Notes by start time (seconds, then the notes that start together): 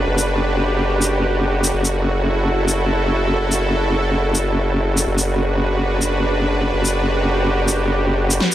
Already playing: D4 B4
0.07 F#1 F#4 G4
0.18 shaker
1.02 shaker
1.64 shaker
1.74 F#1 E4 A4
1.85 shaker
2.68 shaker
3.52 shaker
4.35 shaker
4.98 shaker
5.07 F#1 D4 F#4 B4
5.18 shaker
6.02 shaker
6.74 F#1 F#4 G4
6.85 shaker
7.68 shaker
8.31 shaker
8.40 E3 A4, snare